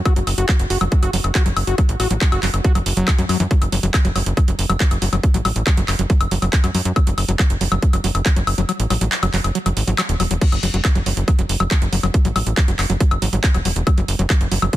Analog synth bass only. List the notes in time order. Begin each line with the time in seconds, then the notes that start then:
0.16 F#1
0.27 F#1
0.38 F#1
0.59 F#1
0.70 F#1
0.81 F#1
1.03 F#1
1.13 F#1
1.24 F#1
1.46 F#1
1.57 F#1
1.67 F#1
1.89 A1
2.00 A1
2.10 A1
2.32 F#1
2.43 F#1
2.54 F#1
2.75 F#1
2.86 F#1
2.97 F#1
3.18 F#2
3.29 F#2
3.40 F#2
3.62 F#1
3.72 F#1
3.83 F#1
4.05 F#1
4.16 F#1
4.26 F#1
4.48 F#1
4.59 F#1
4.69 F#1
4.91 F#1
5.02 F#1
5.13 F#1
5.34 A1
5.45 A1
5.56 A1
5.77 F#1
5.88 F#1
5.99 F#1
6.21 F#1
6.31 F#1
6.42 F#1
6.64 F#2
6.75 F#2
6.85 F#2
7.07 F#1
7.18 F#1
7.28 F#1
7.50 F#1
7.61 F#1
7.72 F#1
7.93 F#1
8.04 F#1
8.15 F#1
8.36 F#1
8.47 F#1
8.58 F#1
8.80 A1
8.90 A1
9.01 A1
9.23 F#1
9.34 F#1
9.44 F#1
9.66 F#1
9.77 G#1
9.87 G#1
10.09 E1
10.20 E1
10.31 E1
10.52 F#1
10.63 F#1
10.74 F#1
10.95 F#1
11.06 F#1
11.17 F#1
11.39 F#1
11.49 F#1
11.60 F#1
11.82 F#1
11.93 F#1
12.03 F#1
12.25 A1
12.36 A1
12.46 A1
12.68 F#1
12.79 F#1
12.90 F#1
13.11 F#1
13.22 G#1
13.33 G#1
13.54 E1
13.65 E1
13.76 E1
13.97 F#1
14.08 F#1
14.19 F#1
14.41 F#1
14.51 F#1
14.62 F#1